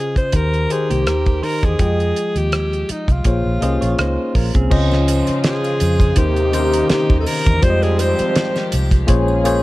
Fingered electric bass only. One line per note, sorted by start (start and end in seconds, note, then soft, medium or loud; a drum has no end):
0.33 0.66 D#2 loud
0.91 1.08 C2 medium
1.08 1.40 D#2 loud
1.63 1.78 E2 medium
1.80 2.12 F2 medium
2.35 2.83 D#2 medium
2.90 muted fingered electric bass stroke soft
3.08 3.23 C2 medium
3.25 3.43 A#1 medium
3.46 3.60 A#1 medium
3.62 3.79 C2 medium
3.82 3.97 A#1 medium
3.99 4.16 C#2 medium
4.35 4.52 A#1 medium
4.55 4.70 C2 medium
4.72 5.21 C#2 loud
5.29 muted fingered electric bass stroke soft
5.81 6.13 F2 medium
6.17 6.82 D#2 loud
6.91 muted fingered electric bass stroke soft
7.10 7.25 D#2 medium
7.47 7.61 E2 medium
7.63 8.13 F2 loud
8.20 muted fingered electric bass stroke soft
8.73 9.05 C2 medium
9.09 9.63 A#1 loud